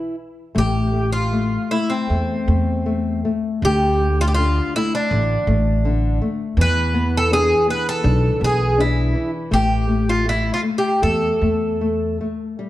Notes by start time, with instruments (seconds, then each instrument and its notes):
Already playing: bouzouki E4
0.55 upright bass A1, nylon-string guitar A3, bouzouki G4
0.93 nylon-string guitar A3
1.12 bouzouki F4
1.32 nylon-string guitar A3
1.71 nylon-string guitar A3, bouzouki E4
1.90 bouzouki C4
2.10 upright bass E2, nylon-string guitar A3
2.48 upright bass E2, nylon-string guitar A3
2.86 nylon-string guitar A3
3.25 nylon-string guitar A3
3.62 upright bass D2, nylon-string guitar D3, bouzouki G4
4.01 nylon-string guitar A3
4.21 bouzouki F4
4.28 bouzouki G4
4.34 nylon-string guitar D3, bouzouki F4
4.76 nylon-string guitar A3, bouzouki E4
4.95 bouzouki D4
5.11 upright bass A1, nylon-string guitar D3
5.47 upright bass A1, nylon-string guitar A3
5.85 nylon-string guitar D3
6.22 nylon-string guitar A3
6.57 upright bass E2, nylon-string guitar E3
6.61 bouzouki B4
6.94 nylon-string guitar B3
7.17 bouzouki A4
7.31 nylon-string guitar D4, bouzouki G#4
7.67 nylon-string guitar B3, bouzouki B4
7.89 bouzouki A4
8.04 upright bass B1, nylon-string guitar D4
8.40 upright bass B1, nylon-string guitar B3
8.44 bouzouki G#4
8.78 nylon-string guitar D4, bouzouki E4
9.14 nylon-string guitar E3
9.51 upright bass A1, nylon-string guitar A3, bouzouki G4
9.88 nylon-string guitar A3
10.09 bouzouki F4
10.25 nylon-string guitar A3, bouzouki E4
10.54 bouzouki F4
10.63 nylon-string guitar A3
10.78 bouzouki G4
11.02 upright bass E2, nylon-string guitar A3, bouzouki A4
11.41 upright bass E2, nylon-string guitar A3
11.81 nylon-string guitar A3
12.21 nylon-string guitar A3
12.59 nylon-string guitar G3